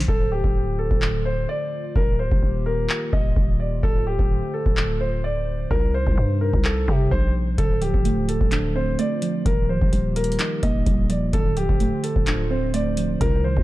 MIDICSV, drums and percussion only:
0, 0, Header, 1, 2, 480
1, 0, Start_track
1, 0, Tempo, 468750
1, 85, Time_signature, 4, 2, 24, 8
1, 13960, End_track
2, 0, Start_track
2, 0, Title_t, "Drums"
2, 5, Note_on_c, 9, 38, 88
2, 85, Note_on_c, 9, 36, 112
2, 107, Note_off_c, 9, 38, 0
2, 187, Note_off_c, 9, 36, 0
2, 452, Note_on_c, 9, 36, 98
2, 554, Note_off_c, 9, 36, 0
2, 931, Note_on_c, 9, 36, 93
2, 1034, Note_off_c, 9, 36, 0
2, 1044, Note_on_c, 9, 39, 106
2, 1146, Note_off_c, 9, 39, 0
2, 2004, Note_on_c, 9, 36, 115
2, 2106, Note_off_c, 9, 36, 0
2, 2371, Note_on_c, 9, 36, 98
2, 2474, Note_off_c, 9, 36, 0
2, 2964, Note_on_c, 9, 39, 108
2, 3067, Note_off_c, 9, 39, 0
2, 3205, Note_on_c, 9, 36, 102
2, 3307, Note_off_c, 9, 36, 0
2, 3445, Note_on_c, 9, 36, 99
2, 3547, Note_off_c, 9, 36, 0
2, 3925, Note_on_c, 9, 36, 115
2, 4027, Note_off_c, 9, 36, 0
2, 4292, Note_on_c, 9, 36, 96
2, 4395, Note_off_c, 9, 36, 0
2, 4772, Note_on_c, 9, 36, 91
2, 4874, Note_off_c, 9, 36, 0
2, 4886, Note_on_c, 9, 39, 111
2, 4988, Note_off_c, 9, 39, 0
2, 5845, Note_on_c, 9, 36, 116
2, 5947, Note_off_c, 9, 36, 0
2, 6212, Note_on_c, 9, 36, 95
2, 6314, Note_off_c, 9, 36, 0
2, 6692, Note_on_c, 9, 36, 90
2, 6794, Note_off_c, 9, 36, 0
2, 6805, Note_on_c, 9, 39, 110
2, 6907, Note_off_c, 9, 39, 0
2, 7045, Note_on_c, 9, 36, 99
2, 7147, Note_off_c, 9, 36, 0
2, 7285, Note_on_c, 9, 36, 101
2, 7387, Note_off_c, 9, 36, 0
2, 7764, Note_on_c, 9, 36, 117
2, 7765, Note_on_c, 9, 42, 80
2, 7867, Note_off_c, 9, 36, 0
2, 7867, Note_off_c, 9, 42, 0
2, 8003, Note_on_c, 9, 42, 65
2, 8106, Note_off_c, 9, 42, 0
2, 8132, Note_on_c, 9, 36, 97
2, 8234, Note_off_c, 9, 36, 0
2, 8245, Note_on_c, 9, 42, 81
2, 8347, Note_off_c, 9, 42, 0
2, 8486, Note_on_c, 9, 42, 79
2, 8588, Note_off_c, 9, 42, 0
2, 8612, Note_on_c, 9, 36, 92
2, 8714, Note_off_c, 9, 36, 0
2, 8720, Note_on_c, 9, 42, 77
2, 8725, Note_on_c, 9, 39, 110
2, 8822, Note_off_c, 9, 42, 0
2, 8827, Note_off_c, 9, 39, 0
2, 9204, Note_on_c, 9, 42, 77
2, 9306, Note_off_c, 9, 42, 0
2, 9442, Note_on_c, 9, 42, 75
2, 9545, Note_off_c, 9, 42, 0
2, 9685, Note_on_c, 9, 36, 115
2, 9685, Note_on_c, 9, 42, 80
2, 9787, Note_off_c, 9, 36, 0
2, 9788, Note_off_c, 9, 42, 0
2, 10052, Note_on_c, 9, 36, 97
2, 10155, Note_off_c, 9, 36, 0
2, 10166, Note_on_c, 9, 42, 80
2, 10268, Note_off_c, 9, 42, 0
2, 10405, Note_on_c, 9, 42, 70
2, 10485, Note_off_c, 9, 42, 0
2, 10485, Note_on_c, 9, 42, 69
2, 10566, Note_off_c, 9, 42, 0
2, 10566, Note_on_c, 9, 42, 68
2, 10641, Note_off_c, 9, 42, 0
2, 10641, Note_on_c, 9, 42, 77
2, 10646, Note_on_c, 9, 39, 110
2, 10743, Note_off_c, 9, 42, 0
2, 10748, Note_off_c, 9, 39, 0
2, 10884, Note_on_c, 9, 42, 68
2, 10885, Note_on_c, 9, 36, 101
2, 10986, Note_off_c, 9, 42, 0
2, 10988, Note_off_c, 9, 36, 0
2, 11125, Note_on_c, 9, 42, 75
2, 11126, Note_on_c, 9, 36, 105
2, 11228, Note_off_c, 9, 36, 0
2, 11228, Note_off_c, 9, 42, 0
2, 11363, Note_on_c, 9, 42, 77
2, 11466, Note_off_c, 9, 42, 0
2, 11605, Note_on_c, 9, 36, 115
2, 11605, Note_on_c, 9, 42, 78
2, 11707, Note_off_c, 9, 42, 0
2, 11708, Note_off_c, 9, 36, 0
2, 11845, Note_on_c, 9, 42, 63
2, 11947, Note_off_c, 9, 42, 0
2, 11973, Note_on_c, 9, 36, 98
2, 12075, Note_off_c, 9, 36, 0
2, 12086, Note_on_c, 9, 42, 80
2, 12188, Note_off_c, 9, 42, 0
2, 12326, Note_on_c, 9, 42, 82
2, 12428, Note_off_c, 9, 42, 0
2, 12452, Note_on_c, 9, 36, 90
2, 12555, Note_off_c, 9, 36, 0
2, 12561, Note_on_c, 9, 42, 76
2, 12566, Note_on_c, 9, 39, 108
2, 12663, Note_off_c, 9, 42, 0
2, 12668, Note_off_c, 9, 39, 0
2, 13045, Note_on_c, 9, 42, 77
2, 13147, Note_off_c, 9, 42, 0
2, 13283, Note_on_c, 9, 42, 75
2, 13385, Note_off_c, 9, 42, 0
2, 13525, Note_on_c, 9, 36, 118
2, 13526, Note_on_c, 9, 42, 80
2, 13628, Note_off_c, 9, 36, 0
2, 13628, Note_off_c, 9, 42, 0
2, 13893, Note_on_c, 9, 36, 93
2, 13960, Note_off_c, 9, 36, 0
2, 13960, End_track
0, 0, End_of_file